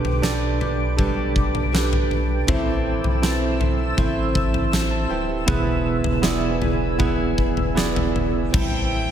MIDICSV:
0, 0, Header, 1, 7, 480
1, 0, Start_track
1, 0, Key_signature, 0, "minor"
1, 0, Tempo, 750000
1, 1587, Time_signature, 4, 2, 24, 8
1, 3506, Tempo, 764331
1, 5788, End_track
2, 0, Start_track
2, 0, Title_t, "Violin section"
2, 0, Program_c, 0, 48
2, 5429, Note_on_c, 0, 79, 82
2, 5788, Note_off_c, 0, 79, 0
2, 5788, End_track
3, 0, Start_track
3, 0, Title_t, "Ambient pad"
3, 0, Program_c, 1, 92
3, 0, Note_on_c, 1, 71, 70
3, 0, Note_on_c, 1, 79, 61
3, 0, Note_on_c, 1, 81, 67
3, 0, Note_on_c, 1, 86, 85
3, 1565, Note_off_c, 1, 86, 0
3, 1566, Note_off_c, 1, 79, 0
3, 1570, Note_off_c, 1, 71, 0
3, 1586, Note_on_c, 1, 72, 75
3, 1589, Note_on_c, 1, 76, 73
3, 1591, Note_on_c, 1, 88, 86
3, 3482, Note_off_c, 1, 81, 0
3, 3487, Note_off_c, 1, 72, 0
3, 3508, Note_on_c, 1, 71, 76
3, 3510, Note_on_c, 1, 80, 69
3, 5405, Note_off_c, 1, 76, 0
3, 5406, Note_off_c, 1, 88, 0
3, 5410, Note_off_c, 1, 71, 0
3, 5411, Note_off_c, 1, 80, 0
3, 5424, Note_on_c, 1, 52, 72
3, 5426, Note_on_c, 1, 57, 66
3, 5426, Note_on_c, 1, 67, 91
3, 5427, Note_on_c, 1, 55, 71
3, 5428, Note_on_c, 1, 64, 71
3, 5788, Note_off_c, 1, 52, 0
3, 5788, Note_off_c, 1, 55, 0
3, 5788, Note_off_c, 1, 57, 0
3, 5788, Note_off_c, 1, 64, 0
3, 5788, Note_off_c, 1, 67, 0
3, 5788, End_track
4, 0, Start_track
4, 0, Title_t, "Tine electric piano"
4, 0, Program_c, 2, 4
4, 0, Control_c, 2, 64, 127
4, 0, Note_on_c, 2, 47, 63
4, 0, Note_on_c, 2, 62, 87
4, 0, Note_on_c, 2, 67, 91
4, 0, Note_on_c, 2, 69, 81
4, 0, Note_on_c, 2, 71, 100
4, 122, Note_off_c, 2, 62, 0
4, 124, Note_off_c, 2, 67, 0
4, 127, Note_off_c, 2, 69, 0
4, 128, Note_off_c, 2, 71, 0
4, 140, Note_on_c, 2, 62, 83
4, 146, Note_on_c, 2, 67, 74
4, 149, Note_on_c, 2, 69, 72
4, 152, Note_on_c, 2, 74, 94
4, 362, Note_off_c, 2, 47, 0
4, 600, Note_off_c, 2, 62, 0
4, 602, Note_off_c, 2, 67, 0
4, 604, Note_off_c, 2, 69, 0
4, 606, Note_off_c, 2, 74, 0
4, 618, Note_on_c, 2, 62, 71
4, 621, Note_on_c, 2, 67, 72
4, 625, Note_on_c, 2, 69, 71
4, 628, Note_on_c, 2, 71, 76
4, 1079, Note_off_c, 2, 62, 0
4, 1081, Note_off_c, 2, 67, 0
4, 1082, Note_off_c, 2, 69, 0
4, 1084, Note_off_c, 2, 71, 0
4, 1106, Note_on_c, 2, 62, 71
4, 1107, Note_on_c, 2, 67, 66
4, 1113, Note_on_c, 2, 69, 69
4, 1115, Note_on_c, 2, 71, 77
4, 1562, Note_off_c, 2, 62, 0
4, 1563, Note_off_c, 2, 67, 0
4, 1566, Note_off_c, 2, 69, 0
4, 1567, Note_off_c, 2, 71, 0
4, 1582, Note_on_c, 2, 60, 94
4, 1586, Note_on_c, 2, 64, 87
4, 1588, Note_on_c, 2, 69, 79
4, 1592, Note_on_c, 2, 72, 105
4, 1594, Control_c, 2, 64, 0
4, 1723, Control_c, 2, 64, 127
4, 2038, Note_off_c, 2, 60, 0
4, 2040, Note_off_c, 2, 64, 0
4, 2041, Note_off_c, 2, 69, 0
4, 2043, Note_off_c, 2, 72, 0
4, 2060, Note_on_c, 2, 60, 77
4, 2063, Note_on_c, 2, 64, 77
4, 2064, Note_on_c, 2, 69, 77
4, 2070, Note_on_c, 2, 72, 89
4, 2518, Note_off_c, 2, 60, 0
4, 2520, Note_off_c, 2, 64, 0
4, 2520, Note_off_c, 2, 69, 0
4, 2523, Note_off_c, 2, 72, 0
4, 2542, Note_on_c, 2, 60, 80
4, 2547, Note_on_c, 2, 64, 67
4, 2550, Note_on_c, 2, 69, 63
4, 2553, Note_on_c, 2, 72, 84
4, 3000, Note_off_c, 2, 60, 0
4, 3002, Note_off_c, 2, 64, 0
4, 3004, Note_off_c, 2, 69, 0
4, 3005, Note_off_c, 2, 72, 0
4, 3143, Note_on_c, 2, 81, 65
4, 3148, Note_on_c, 2, 72, 58
4, 3258, Note_off_c, 2, 81, 0
4, 3261, Note_off_c, 2, 72, 0
4, 3267, Note_on_c, 2, 79, 73
4, 3270, Note_on_c, 2, 71, 54
4, 3381, Note_off_c, 2, 79, 0
4, 3382, Note_off_c, 2, 71, 0
4, 3383, Note_on_c, 2, 76, 61
4, 3387, Note_on_c, 2, 67, 49
4, 3495, Note_on_c, 2, 59, 98
4, 3499, Note_on_c, 2, 64, 82
4, 3500, Note_on_c, 2, 47, 61
4, 3503, Note_on_c, 2, 68, 89
4, 3508, Note_on_c, 2, 71, 102
4, 3516, Control_c, 2, 64, 0
4, 3612, Note_off_c, 2, 76, 0
4, 3615, Note_off_c, 2, 67, 0
4, 3628, Control_c, 2, 64, 127
4, 3952, Note_off_c, 2, 59, 0
4, 3954, Note_off_c, 2, 64, 0
4, 3956, Note_off_c, 2, 68, 0
4, 3959, Note_off_c, 2, 71, 0
4, 3970, Note_on_c, 2, 59, 76
4, 3971, Note_on_c, 2, 64, 78
4, 3976, Note_on_c, 2, 68, 74
4, 3980, Note_on_c, 2, 74, 88
4, 4191, Note_off_c, 2, 47, 0
4, 4429, Note_off_c, 2, 59, 0
4, 4430, Note_off_c, 2, 64, 0
4, 4433, Note_off_c, 2, 68, 0
4, 4434, Note_off_c, 2, 74, 0
4, 4451, Note_on_c, 2, 59, 82
4, 4453, Note_on_c, 2, 64, 70
4, 4457, Note_on_c, 2, 68, 68
4, 4458, Note_on_c, 2, 71, 87
4, 4916, Note_off_c, 2, 59, 0
4, 4917, Note_off_c, 2, 64, 0
4, 4919, Note_off_c, 2, 68, 0
4, 4919, Note_off_c, 2, 71, 0
4, 4934, Note_on_c, 2, 59, 78
4, 4934, Note_on_c, 2, 71, 77
4, 4936, Note_on_c, 2, 64, 72
4, 4941, Note_on_c, 2, 80, 65
4, 4943, Note_on_c, 2, 68, 74
4, 4946, Note_on_c, 2, 74, 88
4, 5169, Note_off_c, 2, 80, 0
4, 5187, Note_on_c, 2, 76, 63
4, 5400, Note_off_c, 2, 59, 0
4, 5404, Note_off_c, 2, 64, 0
4, 5405, Note_off_c, 2, 68, 0
4, 5406, Note_off_c, 2, 74, 0
4, 5411, Note_off_c, 2, 76, 0
4, 5421, Note_on_c, 2, 72, 80
4, 5431, Note_on_c, 2, 64, 66
4, 5437, Control_c, 2, 64, 0
4, 5438, Note_off_c, 2, 71, 0
4, 5551, Control_c, 2, 64, 127
4, 5788, Note_off_c, 2, 64, 0
4, 5788, Note_off_c, 2, 72, 0
4, 5788, End_track
5, 0, Start_track
5, 0, Title_t, "Steel-string acoustic guitar"
5, 0, Program_c, 3, 25
5, 0, Note_on_c, 3, 47, 74
5, 0, Note_on_c, 3, 55, 74
5, 0, Note_on_c, 3, 57, 74
5, 0, Note_on_c, 3, 62, 72
5, 0, Note_on_c, 3, 67, 70
5, 0, Note_on_c, 3, 71, 80
5, 137, Note_off_c, 3, 62, 0
5, 138, Note_off_c, 3, 57, 0
5, 141, Note_on_c, 3, 57, 59
5, 142, Note_off_c, 3, 67, 0
5, 145, Note_on_c, 3, 62, 61
5, 146, Note_off_c, 3, 47, 0
5, 147, Note_off_c, 3, 55, 0
5, 148, Note_off_c, 3, 71, 0
5, 150, Note_on_c, 3, 67, 61
5, 156, Note_on_c, 3, 71, 60
5, 377, Note_off_c, 3, 71, 0
5, 383, Note_off_c, 3, 67, 0
5, 384, Note_off_c, 3, 57, 0
5, 385, Note_on_c, 3, 71, 44
5, 386, Note_off_c, 3, 62, 0
5, 391, Note_on_c, 3, 67, 44
5, 395, Note_on_c, 3, 62, 47
5, 398, Note_on_c, 3, 57, 45
5, 622, Note_off_c, 3, 57, 0
5, 623, Note_off_c, 3, 62, 0
5, 626, Note_off_c, 3, 67, 0
5, 626, Note_off_c, 3, 71, 0
5, 627, Note_on_c, 3, 47, 69
5, 628, Note_on_c, 3, 55, 72
5, 629, Note_on_c, 3, 57, 79
5, 631, Note_on_c, 3, 62, 81
5, 633, Note_on_c, 3, 67, 72
5, 635, Note_on_c, 3, 71, 89
5, 1098, Note_off_c, 3, 57, 0
5, 1098, Note_off_c, 3, 62, 0
5, 1101, Note_on_c, 3, 57, 52
5, 1102, Note_off_c, 3, 67, 0
5, 1106, Note_on_c, 3, 62, 54
5, 1108, Note_off_c, 3, 47, 0
5, 1108, Note_off_c, 3, 55, 0
5, 1108, Note_off_c, 3, 71, 0
5, 1109, Note_on_c, 3, 67, 58
5, 1116, Note_on_c, 3, 71, 66
5, 1582, Note_on_c, 3, 45, 74
5, 1584, Note_off_c, 3, 57, 0
5, 1585, Note_on_c, 3, 52, 72
5, 1586, Note_off_c, 3, 62, 0
5, 1587, Note_on_c, 3, 57, 80
5, 1588, Note_off_c, 3, 67, 0
5, 1590, Note_on_c, 3, 60, 80
5, 1590, Note_on_c, 3, 64, 91
5, 1591, Note_off_c, 3, 71, 0
5, 1593, Note_on_c, 3, 72, 87
5, 2056, Note_off_c, 3, 57, 0
5, 2059, Note_off_c, 3, 60, 0
5, 2062, Note_off_c, 3, 45, 0
5, 2064, Note_on_c, 3, 57, 60
5, 2067, Note_on_c, 3, 60, 63
5, 2068, Note_off_c, 3, 72, 0
5, 2070, Note_off_c, 3, 64, 0
5, 2073, Note_on_c, 3, 64, 56
5, 2077, Note_on_c, 3, 72, 67
5, 2295, Note_off_c, 3, 72, 0
5, 2299, Note_off_c, 3, 64, 0
5, 2302, Note_on_c, 3, 72, 51
5, 2304, Note_off_c, 3, 57, 0
5, 2304, Note_off_c, 3, 60, 0
5, 2307, Note_on_c, 3, 64, 48
5, 2312, Note_on_c, 3, 60, 41
5, 2315, Note_on_c, 3, 57, 40
5, 2539, Note_off_c, 3, 57, 0
5, 2543, Note_off_c, 3, 52, 0
5, 2543, Note_off_c, 3, 60, 0
5, 2543, Note_off_c, 3, 72, 0
5, 2544, Note_off_c, 3, 64, 0
5, 2544, Note_on_c, 3, 45, 71
5, 2545, Note_on_c, 3, 52, 80
5, 2547, Note_on_c, 3, 57, 74
5, 2551, Note_on_c, 3, 60, 84
5, 2551, Note_on_c, 3, 64, 90
5, 2553, Note_on_c, 3, 72, 83
5, 3012, Note_off_c, 3, 57, 0
5, 3017, Note_off_c, 3, 60, 0
5, 3020, Note_on_c, 3, 57, 58
5, 3024, Note_off_c, 3, 45, 0
5, 3025, Note_on_c, 3, 60, 65
5, 3026, Note_off_c, 3, 72, 0
5, 3029, Note_off_c, 3, 64, 0
5, 3031, Note_on_c, 3, 64, 58
5, 3034, Note_on_c, 3, 72, 63
5, 3252, Note_off_c, 3, 72, 0
5, 3256, Note_off_c, 3, 64, 0
5, 3259, Note_on_c, 3, 72, 50
5, 3262, Note_off_c, 3, 60, 0
5, 3263, Note_off_c, 3, 57, 0
5, 3264, Note_on_c, 3, 64, 49
5, 3269, Note_on_c, 3, 60, 47
5, 3273, Note_on_c, 3, 57, 45
5, 3500, Note_off_c, 3, 64, 0
5, 3501, Note_off_c, 3, 52, 0
5, 3503, Note_off_c, 3, 57, 0
5, 3503, Note_on_c, 3, 52, 78
5, 3504, Note_off_c, 3, 72, 0
5, 3505, Note_off_c, 3, 60, 0
5, 3506, Note_on_c, 3, 59, 84
5, 3507, Note_on_c, 3, 64, 78
5, 3510, Note_on_c, 3, 68, 89
5, 3511, Note_on_c, 3, 71, 86
5, 3972, Note_off_c, 3, 59, 0
5, 3979, Note_off_c, 3, 68, 0
5, 3979, Note_on_c, 3, 59, 63
5, 3980, Note_off_c, 3, 64, 0
5, 3983, Note_off_c, 3, 71, 0
5, 3983, Note_on_c, 3, 64, 64
5, 3986, Note_on_c, 3, 68, 68
5, 3990, Note_on_c, 3, 71, 65
5, 4210, Note_off_c, 3, 71, 0
5, 4216, Note_off_c, 3, 68, 0
5, 4217, Note_on_c, 3, 71, 45
5, 4219, Note_off_c, 3, 59, 0
5, 4220, Note_off_c, 3, 64, 0
5, 4224, Note_on_c, 3, 68, 48
5, 4230, Note_on_c, 3, 64, 38
5, 4451, Note_off_c, 3, 52, 0
5, 4451, Note_off_c, 3, 64, 0
5, 4453, Note_on_c, 3, 52, 80
5, 4454, Note_off_c, 3, 68, 0
5, 4455, Note_off_c, 3, 71, 0
5, 4456, Note_on_c, 3, 59, 81
5, 4459, Note_on_c, 3, 64, 74
5, 4462, Note_on_c, 3, 68, 75
5, 4463, Note_on_c, 3, 71, 77
5, 4932, Note_off_c, 3, 59, 0
5, 4940, Note_on_c, 3, 59, 65
5, 4941, Note_off_c, 3, 68, 0
5, 4943, Note_off_c, 3, 64, 0
5, 4943, Note_off_c, 3, 71, 0
5, 4945, Note_on_c, 3, 64, 59
5, 4949, Note_on_c, 3, 68, 60
5, 4951, Note_on_c, 3, 71, 72
5, 5425, Note_off_c, 3, 52, 0
5, 5426, Note_on_c, 3, 45, 72
5, 5427, Note_off_c, 3, 59, 0
5, 5427, Note_on_c, 3, 52, 70
5, 5430, Note_off_c, 3, 64, 0
5, 5431, Note_off_c, 3, 68, 0
5, 5431, Note_on_c, 3, 55, 72
5, 5432, Note_off_c, 3, 71, 0
5, 5432, Note_on_c, 3, 60, 76
5, 5435, Note_on_c, 3, 64, 84
5, 5436, Note_on_c, 3, 69, 89
5, 5788, Note_off_c, 3, 45, 0
5, 5788, Note_off_c, 3, 52, 0
5, 5788, Note_off_c, 3, 55, 0
5, 5788, Note_off_c, 3, 60, 0
5, 5788, Note_off_c, 3, 64, 0
5, 5788, Note_off_c, 3, 69, 0
5, 5788, End_track
6, 0, Start_track
6, 0, Title_t, "Sub bass"
6, 0, Program_c, 4, 38
6, 26, Note_on_c, 4, 35, 72
6, 138, Note_off_c, 4, 35, 0
6, 145, Note_on_c, 4, 35, 93
6, 1561, Note_off_c, 4, 35, 0
6, 1588, Note_on_c, 4, 33, 93
6, 1920, Note_off_c, 4, 33, 0
6, 1944, Note_on_c, 4, 35, 89
6, 2518, Note_off_c, 4, 35, 0
6, 2546, Note_on_c, 4, 33, 107
6, 3241, Note_off_c, 4, 33, 0
6, 3263, Note_on_c, 4, 26, 73
6, 3489, Note_off_c, 4, 26, 0
6, 3506, Note_on_c, 4, 28, 100
6, 3838, Note_off_c, 4, 28, 0
6, 3859, Note_on_c, 4, 28, 85
6, 3971, Note_off_c, 4, 28, 0
6, 3980, Note_on_c, 4, 28, 101
6, 5403, Note_off_c, 4, 28, 0
6, 5427, Note_on_c, 4, 33, 96
6, 5762, Note_off_c, 4, 33, 0
6, 5788, End_track
7, 0, Start_track
7, 0, Title_t, "Drums"
7, 31, Note_on_c, 9, 43, 60
7, 95, Note_off_c, 9, 43, 0
7, 150, Note_on_c, 9, 38, 93
7, 214, Note_off_c, 9, 38, 0
7, 391, Note_on_c, 9, 43, 52
7, 455, Note_off_c, 9, 43, 0
7, 631, Note_on_c, 9, 36, 78
7, 631, Note_on_c, 9, 43, 61
7, 695, Note_off_c, 9, 36, 0
7, 695, Note_off_c, 9, 43, 0
7, 869, Note_on_c, 9, 36, 80
7, 933, Note_off_c, 9, 36, 0
7, 991, Note_on_c, 9, 43, 60
7, 1055, Note_off_c, 9, 43, 0
7, 1118, Note_on_c, 9, 38, 98
7, 1182, Note_off_c, 9, 38, 0
7, 1234, Note_on_c, 9, 43, 61
7, 1298, Note_off_c, 9, 43, 0
7, 1352, Note_on_c, 9, 43, 51
7, 1416, Note_off_c, 9, 43, 0
7, 1589, Note_on_c, 9, 36, 99
7, 1591, Note_on_c, 9, 43, 107
7, 1653, Note_off_c, 9, 36, 0
7, 1655, Note_off_c, 9, 43, 0
7, 1948, Note_on_c, 9, 43, 58
7, 2012, Note_off_c, 9, 43, 0
7, 2069, Note_on_c, 9, 38, 102
7, 2133, Note_off_c, 9, 38, 0
7, 2309, Note_on_c, 9, 43, 58
7, 2373, Note_off_c, 9, 43, 0
7, 2546, Note_on_c, 9, 36, 80
7, 2547, Note_on_c, 9, 43, 61
7, 2610, Note_off_c, 9, 36, 0
7, 2611, Note_off_c, 9, 43, 0
7, 2785, Note_on_c, 9, 36, 88
7, 2849, Note_off_c, 9, 36, 0
7, 2907, Note_on_c, 9, 43, 54
7, 2971, Note_off_c, 9, 43, 0
7, 3029, Note_on_c, 9, 38, 99
7, 3093, Note_off_c, 9, 38, 0
7, 3506, Note_on_c, 9, 43, 103
7, 3507, Note_on_c, 9, 36, 107
7, 3569, Note_off_c, 9, 43, 0
7, 3570, Note_off_c, 9, 36, 0
7, 3861, Note_on_c, 9, 43, 69
7, 3924, Note_off_c, 9, 43, 0
7, 3979, Note_on_c, 9, 38, 100
7, 4042, Note_off_c, 9, 38, 0
7, 4221, Note_on_c, 9, 43, 60
7, 4283, Note_off_c, 9, 43, 0
7, 4460, Note_on_c, 9, 36, 86
7, 4460, Note_on_c, 9, 43, 60
7, 4523, Note_off_c, 9, 36, 0
7, 4523, Note_off_c, 9, 43, 0
7, 4701, Note_on_c, 9, 36, 78
7, 4764, Note_off_c, 9, 36, 0
7, 4820, Note_on_c, 9, 43, 54
7, 4883, Note_off_c, 9, 43, 0
7, 4948, Note_on_c, 9, 38, 99
7, 5011, Note_off_c, 9, 38, 0
7, 5067, Note_on_c, 9, 43, 67
7, 5130, Note_off_c, 9, 43, 0
7, 5189, Note_on_c, 9, 43, 56
7, 5252, Note_off_c, 9, 43, 0
7, 5428, Note_on_c, 9, 36, 115
7, 5428, Note_on_c, 9, 43, 106
7, 5428, Note_on_c, 9, 49, 88
7, 5491, Note_off_c, 9, 36, 0
7, 5491, Note_off_c, 9, 43, 0
7, 5491, Note_off_c, 9, 49, 0
7, 5788, End_track
0, 0, End_of_file